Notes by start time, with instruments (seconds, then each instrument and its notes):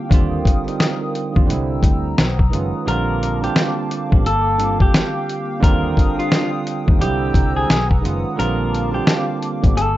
Already playing: tine electric piano D3 G3 C4 E4 F4, analog synth pad F5 G5
0.10 fingered electric bass D#2, tine electric piano D3 G3 C4, analog synth pad A#4 D#6, kick, closed hi-hat
0.14 tine electric piano F4
0.45 kick, closed hi-hat
0.65 tine electric piano G3 C4 D4, closed hi-hat
0.69 tine electric piano D#4
0.80 snare, closed hi-hat
1.15 closed hi-hat
1.32 tine electric piano D3 G3 C4, kick
1.37 fingered electric bass D#2, tine electric piano F4
1.46 fingered electric bass C2, tine electric piano D3 G3 C4, analog synth pad C5 G5 A#5 E6
1.50 tine electric piano E4, closed hi-hat
1.83 fingered electric bass D2, kick, closed hi-hat
2.18 fingered electric bass B1, analog synth pad B4 F#5 D#6, snare, closed hi-hat
2.39 kick
2.50 fingered electric bass F#1, tine electric piano D#3 G#3 C#4, closed hi-hat
2.55 tine electric piano F4
2.85 fingered electric bass A#1, tine electric piano D3 G3 C4, analog synth pad A#3 F5 A5 D6, clean electric guitar A#4, closed hi-hat
2.90 tine electric piano F4
3.23 closed hi-hat
3.41 tine electric piano D3 G3 C4, clean electric guitar G4, closed hi-hat
3.46 tine electric piano F4
3.56 snare, closed hi-hat
3.91 closed hi-hat
4.09 fingered electric bass A1, tine electric piano D3 G3 C4, kick
4.13 tine electric piano G4
4.25 fingered electric bass G1, clean electric guitar A4, analog synth pad G5, closed hi-hat
4.57 tine electric piano D3 G3 C4, closed hi-hat
4.62 tine electric piano F4
4.80 clean electric guitar G4, kick
4.94 snare, closed hi-hat
5.29 closed hi-hat
5.60 fingered electric bass D#2, tine electric piano D3 G3 C4, analog synth pad D4 D#6, clean electric guitar A#4, kick
5.64 tine electric piano F4, closed hi-hat
5.97 kick, closed hi-hat
6.16 tine electric piano D3 G3 C4, clean electric guitar F4, closed hi-hat
6.20 tine electric piano F4
6.32 snare, closed hi-hat
6.67 closed hi-hat
6.85 fingered electric bass D#2, tine electric piano D3 G3 C4, kick
6.90 tine electric piano D#4
6.99 fingered electric bass C2, tine electric piano D3 G3 C4, clean electric guitar G4, analog synth pad C5 A#5 E6, closed hi-hat
7.03 tine electric piano E4
7.34 fingered electric bass C2, kick, closed hi-hat
7.56 clean electric guitar G#4
7.70 fingered electric bass B1, analog synth pad B4 F#5 D#6, snare, closed hi-hat
7.91 kick
8.01 fingered electric bass F#1, tine electric piano D#3 G#3 C#4, closed hi-hat
8.06 tine electric piano F4
8.36 fingered electric bass A#1, tine electric piano D3 G3 C4, analog synth pad A#3 F5 A5 D6, clean electric guitar A#4, closed hi-hat
8.40 tine electric piano F4
8.75 closed hi-hat
8.91 tine electric piano D3 G3 C4, clean electric guitar G4
8.95 tine electric piano F4
9.07 snare, closed hi-hat
9.43 closed hi-hat
9.62 fingered electric bass A1, tine electric piano D3 G3 C4, kick, closed hi-hat
9.66 tine electric piano D4
9.76 fingered electric bass G1, clean electric guitar A4, analog synth pad F5 G5, closed hi-hat